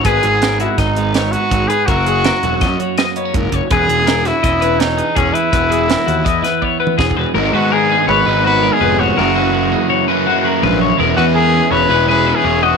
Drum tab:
HH |x--x--x--x--x--x--x--x--x--x--|x--x--x--x--x--x--x--x--x--x--|x--x--x--x--x--x--x--x--x--x--|x--x--x--x--x--x--------------|
SD |------o-----o-----o-----------|------o-----o-----o-----------|------o--o--------o-----------|------o--------o--------o-----|
T2 |------------------------------|------------------------------|------------------------------|----------------------o-------|
BD |o-----------o-----------o-----|o-----------o-----------o--o--|o-----------o-----------o-----|o-----------o-----o-----o-o---|

HH |------------------------------|------------------------------|------------------------------|
SD |------------------------------|------------------------------|------------------------------|
T2 |------------------------------|------------------------------|------------------------------|
BD |------------------------------|------------------------------|------------------------------|